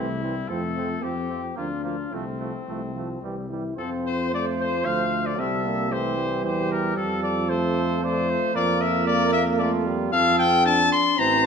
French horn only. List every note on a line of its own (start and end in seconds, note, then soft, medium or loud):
0.00 0.23 A3 medium
0.22 0.49 G3 medium
0.49 1.04 A3 medium
1.03 1.57 C4 medium
1.58 2.14 D4 medium
2.12 2.62 A3 medium
2.67 2.93 A3 soft
2.95 3.22 F3 soft
3.23 3.49 G3 medium
3.50 3.77 E4 medium
3.77 4.34 C4 medium
4.32 4.69 A3 medium
4.85 5.40 A3 medium
5.39 5.67 C4 medium
5.66 5.94 A#3 medium
5.93 6.19 A3 medium
6.18 7.49 G3 medium
7.50 8.02 A3 medium
8.03 8.56 A3 medium
8.54 10.12 A#3 medium
10.13 10.47 C4 medium
10.66 11.19 D4 medium
11.17 11.46 C4 loud